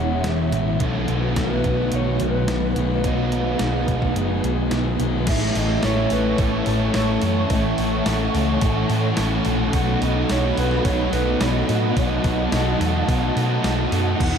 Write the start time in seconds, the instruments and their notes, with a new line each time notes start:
Already playing: picked electric bass E1, overdriven electric guitar E2 B2 E3 G#3 B3 E4, analog synth pad G#3 B3 C#4 E4 C#5, clean electric guitar F#5
0.24 picked electric bass E1, clean electric guitar E5, snare, closed hi-hat
0.52 picked electric bass A1, distorted electric guitar E2 B2 E3, closed hi-hat
0.80 picked electric bass B1, overdriven electric guitar B2 D#3 A3 B3 F#4, distorted electric guitar F#3, analog synth pad A3 B3 D#4 F#4 B4, clean electric guitar A4, kick, closed hi-hat
1.08 picked electric bass B1, closed hi-hat
1.36 picked electric bass B1, clean electric guitar B4, kick, snare, closed hi-hat
1.64 picked electric bass B1, kick, closed hi-hat
1.92 picked electric bass B1, clean electric guitar C#5, closed hi-hat
2.20 picked electric bass B1, clean electric guitar B4, closed hi-hat
2.48 picked electric bass B1, snare, closed hi-hat
2.76 picked electric bass B1, distorted electric guitar F#3 B3, closed hi-hat
2.80 distorted electric guitar B2
3.04 picked electric bass B1, overdriven electric guitar B2 D#3 A3 B3 F#4, distorted electric guitar F#3, analog synth pad G#4, clean electric guitar D#5, kick, closed hi-hat
3.32 closed hi-hat
3.59 picked electric bass B1, snare, closed hi-hat
3.88 picked electric bass B1, kick, closed hi-hat
4.02 kick
4.15 picked electric bass F#1, closed hi-hat
4.43 picked electric bass B1, closed hi-hat
4.71 picked electric bass B1, snare, closed hi-hat
4.99 picked electric bass B1, distorted electric guitar B2 F#3 B3, closed hi-hat
5.27 picked electric bass A1, overdriven electric guitar A2 E3 A3 C#4 A4, analog synth pad A4 C#5 E5 C#6, clean electric guitar E5, kick, open hi-hat, crash
5.55 picked electric bass A1, overdriven electric guitar A3 C#4 A4, clean electric guitar D#5, open hi-hat
5.83 picked electric bass A1, distorted electric guitar A2, overdriven electric guitar E3 A3 C#4, clean electric guitar C#5, snare, open hi-hat
5.87 overdriven electric guitar A4
6.10 picked electric bass A1, overdriven electric guitar C#4 A4, clean electric guitar B4, open hi-hat
6.15 overdriven electric guitar A3
6.38 picked electric bass A1, overdriven electric guitar A2 E3 A3 C#4 A4, clean electric guitar A4, kick, open hi-hat
6.66 picked electric bass A1, overdriven electric guitar C#4 A4, clean electric guitar A4, open hi-hat
6.70 overdriven electric guitar A3
6.94 picked electric bass A1, overdriven electric guitar E3 A3 C#4 A4, clean electric guitar C#5, snare, open hi-hat
7.22 picked electric bass F#2, overdriven electric guitar A3 C#4 A4, open hi-hat
7.26 distorted electric guitar E3
7.50 picked electric bass A1, overdriven electric guitar A2 E3 A3 C#4 A4, clean electric guitar E5, analog synth pad F#5, kick, open hi-hat
7.78 picked electric bass A1, overdriven electric guitar A3 C#4 A4, open hi-hat
8.06 picked electric bass A1, distorted electric guitar A2, overdriven electric guitar E3 A3 C#4 A4, snare, open hi-hat
8.22 clean electric guitar D#5
8.34 picked electric bass C#2, overdriven electric guitar A3 C#4 A4, open hi-hat
8.61 picked electric bass A1, overdriven electric guitar A2 E3 A3 C#4 A4, kick, open hi-hat
8.90 picked electric bass A2, overdriven electric guitar C#4 A4, open hi-hat
8.94 overdriven electric guitar A3
9.17 picked electric bass A1, overdriven electric guitar E3 A3 C#4, snare, open hi-hat
9.22 overdriven electric guitar A4
9.45 picked electric bass A#1, overdriven electric guitar C#4 A4, open hi-hat
9.49 distorted electric guitar E3, overdriven electric guitar A3
9.73 picked electric bass B1, overdriven electric guitar B2 F#3 A3 D#4, distorted electric guitar B3, analog synth pad D#5 B5, clean electric guitar F#5, kick, open hi-hat
9.78 overdriven electric guitar F#4
10.01 picked electric bass B1, overdriven electric guitar A3 D#4 F#4, clean electric guitar D#5, open hi-hat
10.29 picked electric bass B1, distorted electric guitar B2 B3, overdriven electric guitar F#3 A3 D#4 F#4, clean electric guitar C#5, snare, open hi-hat
10.57 picked electric bass B1, overdriven electric guitar A3 D#4 F#4, clean electric guitar B4, open hi-hat
10.71 snare
10.85 picked electric bass B1, overdriven electric guitar B2 F#3 A3 D#4 F#4, clean electric guitar C#5, kick, open hi-hat
10.90 distorted electric guitar B3
11.12 picked electric bass B1, overdriven electric guitar A3 D#4 F#4, clean electric guitar B4, open hi-hat
11.40 picked electric bass B1, overdriven electric guitar F#3 A3 D#4 F#4, clean electric guitar D#5, snare, open hi-hat
11.67 picked electric bass A2, overdriven electric guitar A3 D#4 F#4, distorted electric guitar B3, open hi-hat
11.72 distorted electric guitar F#3
11.95 picked electric bass B1, overdriven electric guitar B2 F#3 A3 D#4 F#4, clean electric guitar D#5, analog synth pad A5, kick, open hi-hat
11.99 distorted electric guitar B3
12.23 picked electric bass B1, overdriven electric guitar A3 D#4 F#4, kick, open hi-hat
12.51 picked electric bass B1, distorted electric guitar B2, overdriven electric guitar F#3 A3 D#4 F#4, snare, open hi-hat
12.56 distorted electric guitar B3
12.80 picked electric bass E2, overdriven electric guitar A3 D#4 F#4, open hi-hat
13.07 picked electric bass B1, overdriven electric guitar B2 F#3 A3 D#4 F#4, distorted electric guitar B3, kick, open hi-hat
13.35 picked electric bass B2, overdriven electric guitar A3 D#4 F#4, open hi-hat
13.62 picked electric bass B1, overdriven electric guitar F#3 A3 D#4 F#4, snare, open hi-hat
13.92 picked electric bass F#2, distorted electric guitar F#3 B3, overdriven electric guitar A3 D#4 F#4, open hi-hat
14.20 picked electric bass E1, overdriven electric guitar E2 B2 E3 B3 E4 F#4, analog synth pad B4 E5 E6, clean electric guitar F#5, kick, crash